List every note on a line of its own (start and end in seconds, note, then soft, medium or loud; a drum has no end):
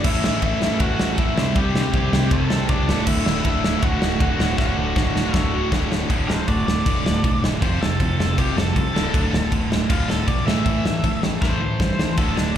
0.04 0.18 A1 loud
0.04 0.22 A2 loud
0.04 0.24 E3 medium
0.04 0.23 A3 loud
0.04 1.36 C#4 loud
0.04 0.23 E4 medium
0.04 1.36 E4 loud
0.04 1.37 A4 loud
0.04 0.23 E5 medium
0.04 kick loud
0.04 crash loud
0.23 0.37 A1 loud
0.23 0.41 A2 medium
0.23 0.43 E3 medium
0.23 0.42 A3 loud
0.23 0.42 E4 medium
0.23 0.42 E5 loud
0.23 snare loud
0.42 0.55 A1 medium
0.42 0.60 A2 loud
0.42 0.60 E3 loud
0.42 0.61 A3 loud
0.42 0.78 E4 medium
0.42 0.82 E5 loud
0.42 kick loud
0.42 ride medium
0.61 0.75 A1 loud
0.61 0.79 A2 medium
0.61 0.80 E3 medium
0.61 0.80 A3 loud
0.61 snare loud
0.80 0.93 A1 medium
0.80 0.97 A2 medium
0.80 0.98 E3 loud
0.80 0.99 A3 medium
0.80 1.16 F#4 medium
0.80 1.19 F#5 loud
0.80 kick loud
0.80 ride loud
0.99 1.13 A1 medium
0.99 1.17 A2 loud
0.99 1.17 E3 loud
0.99 1.18 A3 loud
0.99 snare loud
1.18 1.31 A1 loud
1.18 1.36 A2 medium
1.18 1.36 E3 medium
1.18 1.37 A3 loud
1.18 1.54 E4 medium
1.18 1.57 E5 loud
1.18 kick loud
1.18 ride medium
1.38 1.51 C2 medium
1.38 1.55 C3 medium
1.38 1.56 G3 loud
1.38 1.56 C4 loud
1.38 2.87 E4 loud
1.38 2.88 G4 loud
1.38 2.88 C5 loud
1.38 snare loud
1.55 1.69 C2 loud
1.55 1.74 C3 medium
1.55 1.75 G3 loud
1.55 1.75 C4 loud
1.55 1.92 G4 medium
1.55 1.93 G5 loud
1.55 kick loud
1.55 ride medium
1.74 1.87 C2 medium
1.74 1.93 C3 medium
1.74 1.94 G3 loud
1.74 1.94 C4 loud
1.74 snare loud
1.93 2.07 C2 medium
1.93 2.11 C3 loud
1.93 2.12 G3 loud
1.93 2.13 C4 loud
1.93 2.12 G4 medium
1.93 2.12 G5 loud
1.93 kick loud
1.93 ride medium
2.12 2.26 C2 loud
2.12 2.30 C3 medium
2.12 2.31 G3 medium
2.12 2.31 C4 loud
2.12 2.31 G4 medium
2.12 2.31 G5 loud
2.12 snare loud
2.31 2.57 C2 medium
2.31 2.49 C3 medium
2.31 2.50 G3 medium
2.31 2.50 C4 medium
2.31 2.67 A4 medium
2.31 2.70 A5 loud
2.31 kick loud
2.31 ride medium
2.50 2.68 C3 medium
2.50 2.69 G3 medium
2.50 2.69 C4 loud
2.50 snare loud
2.69 2.91 C#2 medium
2.69 2.87 C3 medium
2.69 2.87 G3 loud
2.69 2.88 C4 loud
2.69 3.05 D4 medium
2.69 3.07 D5 medium
2.69 kick loud
2.69 ride medium
2.88 3.02 D1 medium
2.88 3.07 D2 loud
2.88 3.07 A2 loud
2.88 3.08 D3 loud
2.88 4.40 A3 loud
2.88 4.41 F#4 loud
2.88 snare loud
3.07 3.20 D1 loud
3.07 3.26 D2 medium
3.07 3.25 A2 loud
3.07 3.27 D3 loud
3.07 3.43 E4 medium
3.07 3.42 E5 medium
3.07 kick loud
3.07 crash loud
3.26 3.40 D1 loud
3.26 3.44 D2 medium
3.26 3.45 A2 medium
3.26 3.46 D3 loud
3.26 snare loud
3.45 3.58 D1 loud
3.45 3.63 D2 loud
3.45 3.63 A2 loud
3.45 3.65 D3 loud
3.45 3.81 E4 medium
3.45 3.84 E5 medium
3.45 kick loud
3.45 ride medium
3.63 3.77 D1 medium
3.63 3.82 D2 medium
3.63 3.82 A2 medium
3.63 3.84 D3 medium
3.63 snare loud
3.82 3.96 D1 medium
3.82 4.01 D2 medium
3.82 4.01 A2 loud
3.82 4.02 D3 loud
3.82 4.18 F#4 medium
3.82 4.18 F#5 medium
3.82 kick loud
3.82 ride loud
4.01 4.15 D1 loud
4.01 4.20 D2 medium
4.01 4.20 A2 loud
4.01 4.21 D3 loud
4.01 snare loud
4.20 4.34 D1 medium
4.20 4.39 D2 loud
4.20 4.39 A2 medium
4.20 4.40 D3 loud
4.20 4.56 F#4 medium
4.20 4.57 F#5 medium
4.20 kick loud
4.20 ride medium
4.39 4.53 D1 medium
4.39 4.57 D2 medium
4.39 4.58 A2 loud
4.39 4.58 D3 medium
4.39 5.91 A3 medium
4.39 5.91 F#4 loud
4.39 snare loud
4.58 4.72 D1 loud
4.58 4.76 D2 medium
4.58 4.77 A2 loud
4.58 4.77 D3 loud
4.58 5.68 F#4 medium
4.58 5.34 F#5 medium
4.58 kick loud
4.58 snare medium
4.77 4.91 D1 medium
4.77 4.95 D2 medium
4.77 4.95 A2 medium
4.77 4.96 D3 loud
4.96 5.09 D1 loud
4.96 5.14 D2 loud
4.96 5.15 A2 loud
4.96 5.15 D3 loud
4.96 kick loud
4.96 snare medium
5.15 5.29 D1 loud
5.15 5.33 D2 medium
5.15 5.34 A2 medium
5.15 5.34 D3 loud
5.15 snare medium
5.34 5.60 D1 medium
5.34 5.52 D2 medium
5.34 5.53 A2 medium
5.34 5.53 D3 loud
5.34 5.68 E5 medium
5.34 kick loud
5.34 snare loud
5.53 5.71 D2 loud
5.53 5.72 A2 medium
5.53 5.72 D3 loud
5.72 5.85 D1 medium
5.72 5.90 D2 medium
5.72 5.91 A2 loud
5.72 5.91 D3 loud
5.72 kick loud
5.72 snare loud
5.90 6.04 D1 medium
5.90 6.09 D2 medium
5.90 6.09 A2 loud
5.90 6.10 D3 loud
5.90 snare loud
6.10 6.24 D1 loud
6.10 6.28 D2 medium
6.10 6.28 A2 medium
6.10 6.29 D3 medium
6.10 kick loud
6.10 crash medium
6.28 6.43 D1 medium
6.28 6.46 D2 medium
6.28 6.46 A2 medium
6.28 6.48 D3 medium
6.28 6.47 A4 medium
6.28 6.48 C5 medium
6.28 snare loud
6.47 6.62 D1 medium
6.47 6.65 D2 medium
6.47 6.66 A2 medium
6.47 6.67 D3 medium
6.47 6.65 F#4 medium
6.47 6.66 D5 medium
6.47 kick loud
6.47 crash medium
6.66 6.80 D1 medium
6.66 6.84 D2 medium
6.66 6.85 A2 medium
6.66 6.86 D3 medium
6.66 7.41 D5 medium
6.66 snare loud
6.86 7.00 D1 medium
6.86 7.04 D2 medium
6.86 7.04 A2 loud
6.86 7.05 D3 medium
6.86 kick loud
6.86 crash medium
7.04 7.18 D1 medium
7.04 7.22 D2 medium
7.04 7.23 A2 medium
7.04 7.24 D3 loud
7.04 snare loud
7.24 7.38 B1 medium
7.24 7.41 D2 medium
7.24 7.41 A2 medium
7.24 7.42 D3 medium
7.24 kick loud
7.24 crash medium
7.42 7.56 E1 medium
7.42 7.61 D2 medium
7.42 7.61 A2 medium
7.42 7.61 D3 medium
7.42 snare loud
7.62 7.76 F1 medium
7.62 7.80 F2 medium
7.62 7.80 C3 loud
7.62 7.81 F3 medium
7.62 7.81 C5 medium
7.62 kick loud
7.62 crash medium
7.80 7.95 F1 medium
7.80 7.98 F2 medium
7.80 7.99 C3 medium
7.80 8.00 F3 loud
7.80 8.37 A4 medium
7.80 snare loud
8.00 8.14 F1 medium
8.00 8.17 F2 medium
8.00 8.18 C3 medium
8.00 8.19 F3 medium
8.00 kick loud
8.00 crash medium
8.18 8.33 F1 medium
8.18 8.36 F2 medium
8.18 8.37 C3 medium
8.18 8.37 F3 loud
8.18 snare loud
8.38 8.52 F1 medium
8.38 8.56 F2 medium
8.38 8.56 C3 loud
8.38 8.57 F3 medium
8.38 8.57 G4 medium
8.38 kick loud
8.38 crash medium
8.56 8.70 F1 medium
8.56 8.74 F2 medium
8.56 8.75 C3 medium
8.56 8.74 F3 medium
8.56 8.75 A4 medium
8.56 snare loud
8.76 8.90 C2 medium
8.76 8.93 F2 medium
8.76 8.93 C3 medium
8.76 8.94 F3 medium
8.76 9.50 A4 medium
8.76 kick loud
8.76 crash medium
8.94 9.09 D1 medium
8.94 9.12 D2 medium
8.94 9.13 A2 loud
8.94 9.13 D3 medium
8.94 snare loud
9.13 9.28 D1 medium
9.13 9.32 D2 medium
9.13 9.32 A2 loud
9.13 9.32 D3 loud
9.13 kick loud
9.13 crash medium
9.33 9.47 D1 medium
9.33 9.50 D2 medium
9.33 9.50 A2 medium
9.33 9.51 D3 medium
9.33 snare loud
9.51 9.66 D1 medium
9.51 9.69 D2 medium
9.51 9.69 A2 medium
9.51 9.70 D3 loud
9.51 kick loud
9.51 crash medium
9.70 9.84 D1 medium
9.70 9.88 D2 medium
9.70 9.88 A2 medium
9.70 9.89 D3 loud
9.70 snare loud
9.89 10.04 D1 medium
9.89 10.07 D2 medium
9.89 10.08 A2 medium
9.89 10.08 D3 loud
9.89 10.09 F4 medium
9.89 kick loud
9.89 crash medium
10.08 10.22 D1 medium
10.08 10.26 D2 medium
10.08 10.26 A2 medium
10.08 10.27 D3 medium
10.08 10.28 A4 medium
10.08 snare loud
10.28 10.42 B1 medium
10.28 10.45 D2 medium
10.28 10.45 A2 loud
10.28 10.46 D3 medium
10.28 10.46 D5 medium
10.28 kick loud
10.28 crash medium
10.46 10.60 A1 medium
10.46 10.64 A2 medium
10.46 10.65 E3 loud
10.46 10.65 A3 loud
10.46 11.20 E5 medium
10.46 snare loud
10.65 10.80 A1 loud
10.65 10.84 A2 medium
10.65 10.84 E3 loud
10.65 10.84 A3 medium
10.65 kick loud
10.65 crash medium
10.85 10.99 A1 medium
10.85 11.02 A2 medium
10.85 11.02 E3 medium
10.85 11.04 A3 medium
10.85 snare loud
11.04 11.18 A1 medium
11.04 11.22 A2 medium
11.04 11.22 E3 medium
11.04 11.24 A3 medium
11.04 kick loud
11.04 crash medium
11.23 11.37 A1 medium
11.23 11.40 A2 medium
11.23 11.41 E3 medium
11.23 11.43 A3 medium
11.23 snare loud
11.42 11.56 A1 medium
11.42 11.60 A2 medium
11.42 11.61 E3 medium
11.42 11.61 A3 loud
11.42 12.16 C5 loud
11.42 kick loud
11.42 snare medium
11.61 11.75 A1 medium
11.61 11.78 A2 medium
11.61 11.79 E3 medium
11.61 11.80 A3 medium
11.80 11.94 G2 medium
11.80 11.97 A2 medium
11.80 11.97 E3 medium
11.80 11.99 A3 loud
11.80 kick loud
11.80 snare medium
11.99 12.13 A1 medium
11.99 12.16 A2 medium
11.99 12.17 E3 medium
11.99 12.18 A3 loud
11.99 snare loud
12.17 12.32 D1 loud
12.17 12.36 D2 medium
12.17 12.36 A2 medium
12.17 12.37 D3 loud
12.17 12.37 A4 medium
12.17 kick loud
12.17 crash medium
12.37 12.51 D1 medium
12.37 12.55 D2 medium
12.37 12.55 A2 medium
12.37 12.55 D3 loud
12.37 12.56 D4 medium
12.37 snare loud
12.54 12.57 D2 medium